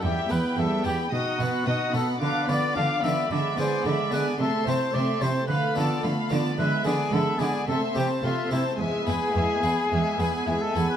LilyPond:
<<
  \new Staff \with { instrumentName = "Violin section" } { \time 4/4 \key b \phrygian \tempo 4 = 110 g''8 b''8 g''8 b''8 dis'''8 b''8 dis'''8 b''8 | \key e \phrygian d'''8 b''8 d'''8 b''8 b''8 gis''8 b''8 gis''8 | c'''8 a''8 c'''8 a''8 b''8 a''8 b''8 a''8 | b''8 gis''8 b''8 gis''8 c'''8 a''8 c'''8 a''8 |
gis''8 b''8 gis''8 b''8 gis''8 b''8 gis''8 b''8 | }
  \new Staff \with { instrumentName = "Violin section" } { \time 4/4 \key b \phrygian e''8 g''8 e''8 g''8 dis''8 fis''8 dis''8 fis''8 | \key e \phrygian f''8 d''8 f''8 d''8 e''8 d''8 e''8 d''8 | e''8 c''8 e''8 c''8 f''8 d''8 f''8 d''8 | e''8 d''8 e''8 d''8 e''8 c''8 e''8 c''8 |
e''8 gis''8 e''8 gis''8 e''8 gis''8 e''8 gis''8 | }
  \new Staff \with { instrumentName = "Trumpet" } { \time 4/4 \key b \phrygian g'8 b'8 a'8 g'8 fis'4 fis'8 a'8 | \key e \phrygian b'8 d''8 f''8 e''8 d''8 c''8 d''8 b'8 | a'8 c''8 d''8 c''8 b'8 a'8 r4 | b'8 gis'8 a'8 gis'8 a'8 g'8 f'8 e'8 |
gis'2. gis'16 a'8 b'16 | }
  \new Staff \with { instrumentName = "Viola section" } { \time 4/4 \key b \phrygian g8 b8 g8 b8 dis'8 b8 dis'8 b8 | \key e \phrygian d'8 b8 d'8 b8 gis8 b8 gis8 b8 | a8 c'8 a8 c'8 a8 b8 a8 b8 | gis8 b8 gis8 b8 a8 c'8 a8 c'8 |
gis8 b8 gis8 b8 gis8 b8 gis8 b8 | }
  \new Staff \with { instrumentName = "Harpsichord" } { \time 4/4 \key b \phrygian << { r8 <b e'>4 <b e'>8 r8 <b dis'>4 <b dis'>8 | \key e \phrygian r8 <b f'>4 <b f'>8 r8 <gis b e'>4 <gis b e'>8 | r8 <a c' e'>4 <a c' e'>8 r8 <a b f'>4 <a b f'>8 | r8 <gis b e'>4 <gis b e'>8 r8 <a c' e'>4 <a c' e'>8 |
r8 <b e'>4 <b e'>8 r8 <b e'>4 <b e'>8 | } \\ { e,8 e,8 e,8 e,8 b,8 b,8 b,8 b,8 | d8 d8 d8 d8 d8 d8 d8 d8 | c8 c8 c8 c8 d8 d8 d8 d8 | d8 d8 d8 d8 c8 c8 c8 c8 |
e,8 e,8 e,8 e,8 e,8 e,8 e,8 e,8 | } >> }
  \new Staff \with { instrumentName = "Cello section" } { \clef bass \time 4/4 \key b \phrygian e,8 e,8 e,8 e,8 b,8 b,8 b,8 b,8 | \key e \phrygian d8 d8 d8 d8 d8 d8 d8 d8 | c8 c8 c8 c8 d8 d8 d8 d8 | d8 d8 d8 d8 c8 c8 c8 c8 |
e,8 e,8 e,8 e,8 e,8 e,8 e,8 e,8 | }
>>